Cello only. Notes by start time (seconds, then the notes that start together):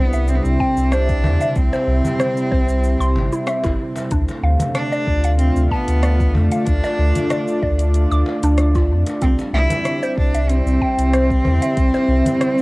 Already playing: B3
0.29 C4
0.35 B3
0.43 C4
0.93 D4
1.56 C4
4.74 D4
5.38 C4
5.70 B3
6.34 A3
6.65 D4
9.23 C4
9.54 E4
10.18 D4
10.50 C4